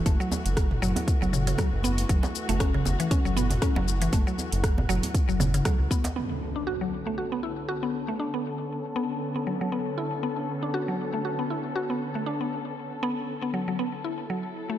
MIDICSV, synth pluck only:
0, 0, Header, 1, 2, 480
1, 0, Start_track
1, 0, Key_signature, 2, "minor"
1, 0, Tempo, 508475
1, 57, Time_signature, 4, 2, 24, 8
1, 13954, End_track
2, 0, Start_track
2, 0, Title_t, "Synth pluck"
2, 0, Program_c, 0, 84
2, 55, Note_on_c, 0, 57, 83
2, 176, Note_off_c, 0, 57, 0
2, 190, Note_on_c, 0, 54, 78
2, 291, Note_off_c, 0, 54, 0
2, 776, Note_on_c, 0, 54, 102
2, 897, Note_off_c, 0, 54, 0
2, 1151, Note_on_c, 0, 54, 78
2, 1251, Note_off_c, 0, 54, 0
2, 1256, Note_on_c, 0, 49, 72
2, 1377, Note_off_c, 0, 49, 0
2, 1389, Note_on_c, 0, 49, 75
2, 1485, Note_off_c, 0, 49, 0
2, 1495, Note_on_c, 0, 54, 80
2, 1568, Note_off_c, 0, 54, 0
2, 1736, Note_on_c, 0, 59, 78
2, 1857, Note_off_c, 0, 59, 0
2, 1975, Note_on_c, 0, 54, 82
2, 2097, Note_off_c, 0, 54, 0
2, 2349, Note_on_c, 0, 57, 77
2, 2451, Note_off_c, 0, 57, 0
2, 2455, Note_on_c, 0, 61, 100
2, 2577, Note_off_c, 0, 61, 0
2, 2590, Note_on_c, 0, 49, 77
2, 2685, Note_off_c, 0, 49, 0
2, 2830, Note_on_c, 0, 52, 77
2, 2888, Note_off_c, 0, 52, 0
2, 2936, Note_on_c, 0, 61, 87
2, 3057, Note_off_c, 0, 61, 0
2, 3070, Note_on_c, 0, 54, 78
2, 3171, Note_off_c, 0, 54, 0
2, 3177, Note_on_c, 0, 59, 74
2, 3298, Note_off_c, 0, 59, 0
2, 3417, Note_on_c, 0, 61, 102
2, 3537, Note_off_c, 0, 61, 0
2, 3551, Note_on_c, 0, 54, 77
2, 3646, Note_off_c, 0, 54, 0
2, 3791, Note_on_c, 0, 52, 75
2, 3848, Note_off_c, 0, 52, 0
2, 3896, Note_on_c, 0, 57, 83
2, 4017, Note_off_c, 0, 57, 0
2, 4031, Note_on_c, 0, 54, 77
2, 4131, Note_off_c, 0, 54, 0
2, 4616, Note_on_c, 0, 54, 101
2, 4737, Note_off_c, 0, 54, 0
2, 4990, Note_on_c, 0, 54, 78
2, 5091, Note_off_c, 0, 54, 0
2, 5096, Note_on_c, 0, 49, 78
2, 5217, Note_off_c, 0, 49, 0
2, 5230, Note_on_c, 0, 49, 75
2, 5326, Note_off_c, 0, 49, 0
2, 5335, Note_on_c, 0, 54, 84
2, 5408, Note_off_c, 0, 54, 0
2, 5576, Note_on_c, 0, 59, 77
2, 5697, Note_off_c, 0, 59, 0
2, 5816, Note_on_c, 0, 59, 76
2, 5937, Note_off_c, 0, 59, 0
2, 6190, Note_on_c, 0, 62, 71
2, 6291, Note_off_c, 0, 62, 0
2, 6296, Note_on_c, 0, 66, 93
2, 6417, Note_off_c, 0, 66, 0
2, 6430, Note_on_c, 0, 54, 70
2, 6526, Note_off_c, 0, 54, 0
2, 6670, Note_on_c, 0, 57, 72
2, 6728, Note_off_c, 0, 57, 0
2, 6776, Note_on_c, 0, 66, 78
2, 6897, Note_off_c, 0, 66, 0
2, 6910, Note_on_c, 0, 59, 72
2, 7011, Note_off_c, 0, 59, 0
2, 7015, Note_on_c, 0, 64, 73
2, 7136, Note_off_c, 0, 64, 0
2, 7255, Note_on_c, 0, 66, 93
2, 7377, Note_off_c, 0, 66, 0
2, 7390, Note_on_c, 0, 59, 72
2, 7486, Note_off_c, 0, 59, 0
2, 7631, Note_on_c, 0, 57, 73
2, 7688, Note_off_c, 0, 57, 0
2, 7736, Note_on_c, 0, 62, 76
2, 7857, Note_off_c, 0, 62, 0
2, 7871, Note_on_c, 0, 59, 72
2, 7972, Note_off_c, 0, 59, 0
2, 8457, Note_on_c, 0, 59, 97
2, 8577, Note_off_c, 0, 59, 0
2, 8832, Note_on_c, 0, 59, 74
2, 8932, Note_off_c, 0, 59, 0
2, 8938, Note_on_c, 0, 54, 71
2, 9058, Note_off_c, 0, 54, 0
2, 9073, Note_on_c, 0, 54, 73
2, 9167, Note_off_c, 0, 54, 0
2, 9177, Note_on_c, 0, 59, 80
2, 9249, Note_off_c, 0, 59, 0
2, 9418, Note_on_c, 0, 64, 75
2, 9538, Note_off_c, 0, 64, 0
2, 9658, Note_on_c, 0, 59, 81
2, 9778, Note_off_c, 0, 59, 0
2, 10031, Note_on_c, 0, 62, 71
2, 10131, Note_off_c, 0, 62, 0
2, 10138, Note_on_c, 0, 66, 96
2, 10258, Note_off_c, 0, 66, 0
2, 10273, Note_on_c, 0, 54, 69
2, 10367, Note_off_c, 0, 54, 0
2, 10512, Note_on_c, 0, 57, 71
2, 10568, Note_off_c, 0, 57, 0
2, 10617, Note_on_c, 0, 66, 80
2, 10738, Note_off_c, 0, 66, 0
2, 10751, Note_on_c, 0, 59, 76
2, 10851, Note_off_c, 0, 59, 0
2, 10859, Note_on_c, 0, 64, 72
2, 10979, Note_off_c, 0, 64, 0
2, 11097, Note_on_c, 0, 66, 96
2, 11218, Note_off_c, 0, 66, 0
2, 11232, Note_on_c, 0, 59, 75
2, 11327, Note_off_c, 0, 59, 0
2, 11472, Note_on_c, 0, 57, 73
2, 11528, Note_off_c, 0, 57, 0
2, 11577, Note_on_c, 0, 62, 80
2, 11697, Note_off_c, 0, 62, 0
2, 11712, Note_on_c, 0, 59, 72
2, 11812, Note_off_c, 0, 59, 0
2, 12298, Note_on_c, 0, 59, 100
2, 12418, Note_off_c, 0, 59, 0
2, 12672, Note_on_c, 0, 59, 76
2, 12772, Note_off_c, 0, 59, 0
2, 12778, Note_on_c, 0, 54, 72
2, 12898, Note_off_c, 0, 54, 0
2, 12913, Note_on_c, 0, 54, 75
2, 13007, Note_off_c, 0, 54, 0
2, 13018, Note_on_c, 0, 59, 77
2, 13090, Note_off_c, 0, 59, 0
2, 13258, Note_on_c, 0, 64, 74
2, 13378, Note_off_c, 0, 64, 0
2, 13498, Note_on_c, 0, 54, 78
2, 13618, Note_off_c, 0, 54, 0
2, 13873, Note_on_c, 0, 57, 74
2, 13954, Note_off_c, 0, 57, 0
2, 13954, End_track
0, 0, End_of_file